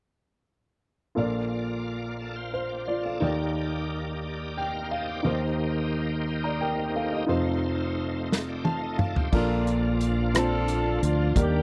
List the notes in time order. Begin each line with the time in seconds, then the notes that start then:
1.15 A#1 A#2 A#3 F4 A4 A#4 D5
2.19 A4 D5
2.36 C5 F5
2.54 C5 F5
2.69 D5 G5
2.85 F4 C5 D5 F5
3.02 A4 D5 F5
3.20 D#2 D#3 A#3 D#4 G4 A#4 C#5 D5
3.27 D5
4.57 D5 F5 G5
4.75 F5 A#5
4.91 C5 D#5 F5 A5
5.08 D5 G5
5.23 D#2 D#3 A#3 D#4 G4 A#4 C5
6.44 D5 A#5
6.61 A#4 G5
6.96 A4 F5
7.13 G4 D#5
7.27 F1 F2 A3 D#4 F4 A4 C5
8.32 snare
8.49 D5 G5
8.65 C5 F5 A5, high tom
8.83 A4 D#5
8.98 A4 D5 F5, mid tom
9.16 G4 C5, floor tom
9.32 A#1 A#2 F3 A#3 D4 F4 G#4 A4 A#4, kick, crash
9.41 F4
9.67 closed hi-hat
10.01 closed hi-hat
10.34 C4 D4 F4 A4 C5, cross-stick, closed hi-hat
10.40 D4
10.68 closed hi-hat
11.03 D2 F4, closed hi-hat
11.35 D#2 D#3 G3 A#3 D4 F4 G4 A#4, kick, closed hi-hat
11.43 G4